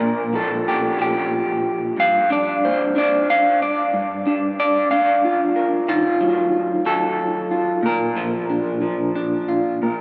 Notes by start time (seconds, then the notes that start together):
Already playing: F3 D4 A#4
0.00 A#2
0.33 F3 A4
0.68 G4
0.99 F3 G4
1.97 G2 F5
2.30 D4 D5
2.65 C5
2.96 D4 D5
3.30 F5
3.62 D5
3.94 G2
4.27 D4
4.60 D5
4.91 D4 F5
5.24 F4
5.56 A#4
5.88 D#3 F4
6.21 F#3
6.85 F#3 A4
7.51 F4
7.83 A#2 A#4
8.17 F3
8.50 D4
8.82 F3
9.16 D4
9.48 F4
9.82 A#2 A#4